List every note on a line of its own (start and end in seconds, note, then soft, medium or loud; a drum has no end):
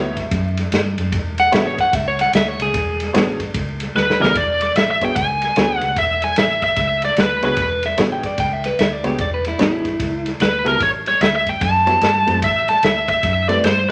0.00 0.25 D2 medium
0.00 0.14 B3 medium
0.00 0.14 E4 medium
0.00 0.14 F#4 medium
0.00 0.14 G4 medium
0.00 0.14 C#5 loud
0.00 0.82 E5 loud
0.17 kick medium
0.17 snare soft
0.17 ride medium
0.31 0.65 F#2 loud
0.31 kick loud
0.31 snare soft
0.31 ride medium
0.57 snare soft
0.57 ride medium
0.72 0.93 G2 loud
0.72 snare loud
0.72 ride medium
0.98 1.14 F#2 medium
0.98 snare soft
0.98 ride medium
1.12 1.46 E1 loud
1.12 kick loud
1.12 snare soft
1.12 ride medium
1.38 1.53 F#5 loud
1.38 snare soft
1.38 ride medium
1.51 1.86 A1 loud
1.51 1.75 B3 medium
1.51 1.75 D4 medium
1.51 1.75 F#4 medium
1.51 1.75 G#4 medium
1.51 1.75 C#5 medium
1.51 1.66 E5 loud
1.51 snare loud
1.51 ride medium
1.67 1.80 C#5 medium
1.78 1.95 F#5 loud
1.78 kick medium
1.78 snare soft
1.78 ride medium
1.93 2.26 C#2 loud
1.93 2.07 E5 loud
1.93 kick loud
1.93 snare soft
1.93 ride loud
2.08 2.20 C#5 loud
2.19 2.33 F#5 medium
2.19 snare soft
2.19 ride medium
2.33 2.54 D2 loud
2.33 2.48 E5 medium
2.33 snare loud
2.33 ride medium
2.48 2.61 C#5 medium
2.59 2.71 C#2 medium
2.59 3.39 G#4 loud
2.59 snare soft
2.59 ride medium
2.74 3.07 E1 loud
2.74 kick loud
2.74 snare soft
2.74 ride medium
3.00 snare soft
3.00 ride medium
3.13 3.48 A1 loud
3.13 3.36 B3 medium
3.13 3.37 D4 medium
3.13 3.37 F#4 medium
3.13 3.37 G#4 medium
3.13 3.37 C#5 medium
3.13 snare loud
3.13 ride medium
3.40 kick medium
3.40 snare soft
3.40 ride medium
3.54 3.88 C#2 loud
3.54 kick loud
3.54 snare soft
3.54 ride loud
3.80 snare soft
3.80 ride medium
3.95 4.16 D2 medium
3.95 4.22 B4 loud
3.95 snare medium
4.10 snare medium
4.20 4.33 C#2 loud
4.20 4.33 E3 medium
4.20 4.33 B3 medium
4.20 4.33 D4 medium
4.20 4.34 F#4 medium
4.20 4.34 G#4 medium
4.20 4.36 A#4 medium
4.20 4.34 D5 medium
4.20 snare loud
4.35 4.69 E1 medium
4.35 4.61 D5 medium
4.35 kick loud
4.35 snare soft
4.35 ride medium
4.61 4.76 D5 medium
4.61 snare soft
4.61 ride medium
4.75 5.09 A1 loud
4.75 4.88 E5 loud
4.75 snare loud
4.75 ride medium
4.91 5.04 E5 loud
5.01 5.14 B3 medium
5.01 5.14 D4 medium
5.01 5.14 F#4 medium
5.01 5.15 G#4 medium
5.01 5.15 C#5 medium
5.01 5.16 G5 loud
5.01 kick medium
5.01 snare soft
5.01 ride medium
5.16 5.49 C#2 medium
5.16 5.76 G#5 loud
5.16 kick loud
5.16 snare soft
5.16 ride medium
5.42 snare soft
5.42 ride medium
5.56 5.78 D2 loud
5.56 5.79 B3 medium
5.56 5.79 D4 medium
5.56 5.79 F#4 medium
5.56 5.79 G#4 medium
5.56 5.80 C#5 medium
5.56 snare loud
5.56 ride medium
5.76 5.99 F#5 loud
5.81 5.94 C#2 medium
5.81 snare soft
5.81 ride medium
5.96 6.30 E1 medium
5.96 6.24 E5 loud
5.96 kick loud
5.96 snare soft
5.96 ride medium
6.22 6.37 G#5 medium
6.22 snare soft
6.22 ride medium
6.36 6.70 A1 medium
6.36 6.62 E5 medium
6.36 snare loud
6.36 ride medium
6.62 7.00 E5 medium
6.62 kick medium
6.62 snare soft
6.62 ride medium
6.76 7.10 C#2 loud
6.76 kick loud
6.76 snare soft
6.76 ride medium
7.02 7.19 D5 medium
7.02 snare soft
7.02 ride medium
7.17 7.39 D2 medium
7.17 7.44 B4 medium
7.17 snare loud
7.17 ride medium
7.42 7.55 C#2 medium
7.42 7.56 B3 medium
7.42 7.56 D4 medium
7.42 7.56 F#4 medium
7.42 7.56 G#4 medium
7.42 7.82 B4 medium
7.42 7.56 C#5 medium
7.42 snare soft
7.42 ride medium
7.57 7.91 E1 medium
7.57 kick loud
7.57 snare soft
7.57 ride medium
7.83 7.98 E5 loud
7.83 snare soft
7.83 ride medium
7.97 8.31 A1 medium
7.97 8.21 B3 medium
7.97 8.21 D4 medium
7.97 8.21 F#4 medium
7.97 8.21 G#4 medium
7.97 8.21 C#5 medium
7.97 snare loud
7.97 ride medium
8.12 8.25 G5 medium
8.23 8.38 D5 medium
8.23 kick medium
8.23 snare soft
8.23 ride medium
8.38 8.72 C#2 medium
8.38 8.53 G5 medium
8.38 kick loud
8.38 snare soft
8.38 ride medium
8.53 8.66 E5 medium
8.64 8.79 B4 medium
8.64 snare soft
8.64 ride medium
8.79 9.00 D2 medium
8.79 8.93 E5 medium
8.79 snare loud
8.79 ride medium
8.93 9.06 D5 medium
9.03 9.16 C#2 medium
9.03 9.17 B3 medium
9.03 9.17 D4 medium
9.03 9.17 F#4 medium
9.03 9.19 G4 medium
9.03 9.17 G#4 medium
9.03 9.18 C#5 medium
9.03 snare soft
9.03 ride medium
9.18 9.53 E1 medium
9.18 9.33 D5 medium
9.18 kick loud
9.18 snare soft
9.18 ride medium
9.34 9.46 B4 medium
9.45 9.59 E4 medium
9.45 snare soft
9.45 ride medium
9.58 9.93 A1 medium
9.58 9.82 B3 medium
9.58 9.82 D4 medium
9.58 10.31 E4 loud
9.58 9.82 F#4 medium
9.58 9.82 G#4 medium
9.58 9.82 C#5 medium
9.58 snare loud
9.58 ride medium
9.85 kick medium
9.85 snare soft
9.85 ride medium
10.00 10.33 C#2 medium
10.00 kick loud
10.00 snare soft
10.00 ride medium
10.26 snare soft
10.26 ride medium
10.40 10.61 D2 medium
10.40 10.67 B4 medium
10.40 snare loud
10.40 ride medium
10.64 10.78 C#2 medium
10.64 10.78 B3 medium
10.64 10.78 E4 medium
10.64 10.79 F#4 medium
10.64 10.79 G4 medium
10.64 10.79 A4 medium
10.64 10.82 A#4 medium
10.64 snare soft
10.64 ride medium
10.80 11.14 A1 medium
10.80 10.89 C#5 medium
10.80 kick loud
10.80 snare soft
10.80 ride medium
11.06 11.22 C#5 medium
11.06 snare soft
11.06 ride medium
11.21 11.54 D2 medium
11.21 11.35 E5 loud
11.21 snare loud
11.21 ride medium
11.36 11.49 E5 medium
11.46 11.62 G5 medium
11.46 kick medium
11.46 snare soft
11.46 ride medium
11.61 11.95 F#2 medium
11.61 12.39 A5 loud
11.61 kick loud
11.61 snare soft
11.61 ride medium
11.86 12.00 B3 medium
11.86 12.00 E4 medium
11.86 12.00 F#4 medium
11.86 12.00 G4 medium
11.86 12.00 C#5 medium
11.86 snare soft
11.86 ride medium
12.01 12.23 G2 medium
12.01 snare loud
12.01 ride medium
12.27 12.44 F#2 medium
12.27 12.40 A3 medium
12.27 12.40 C4 medium
12.27 12.41 E4 medium
12.27 12.41 G4 medium
12.27 12.41 C5 medium
12.27 snare soft
12.27 ride medium
12.42 12.76 A1 medium
12.42 12.67 E5 medium
12.42 kick loud
12.42 snare soft
12.42 ride medium
12.68 12.82 A5 medium
12.68 snare soft
12.68 ride medium
12.83 13.16 D2 medium
12.83 13.08 E5 medium
12.83 snare loud
12.83 ride medium
13.08 13.49 E5 medium
13.08 kick medium
13.08 snare soft
13.08 ride medium
13.23 13.57 F#2 medium
13.23 kick loud
13.23 snare soft
13.23 ride medium
13.48 13.62 A3 medium
13.48 13.62 C4 medium
13.48 13.62 E4 medium
13.48 13.62 G4 medium
13.48 13.62 B4 medium
13.48 13.64 D5 medium
13.48 snare soft
13.48 ride medium
13.64 13.85 G2 loud
13.64 13.88 C5 medium
13.64 snare loud
13.64 ride medium